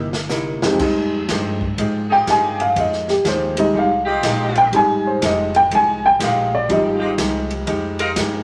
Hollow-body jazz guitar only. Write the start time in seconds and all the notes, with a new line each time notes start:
Already playing: C3 A#3 D#4 E4
0.29 C3 A#3 D#4 E4
0.80 F3 G#3 D#4 G4
1.29 F3 G#3 D#4 G4
1.78 F3 G#3 D#4 G4
2.27 F3 G#3 D#4 G4
2.77 F3 G#3 D#4 G4
3.26 F3 G#3 D#4 G4
3.74 F3 G#3 D#4 G4
4.24 F3 G#3 D#4 G4
4.73 F3 G#3 D#4 G4
5.22 F3 G#3 D#4 G4
5.71 F3 G#3 D#4 G4
6.19 F3 G#3 D#4 G4
6.68 F3 G#3 D#4 G4
7.18 F3 G#3 D#4 G4
7.67 F3 G#3 D#4 G4
8.17 F3 G#3 D#4 G4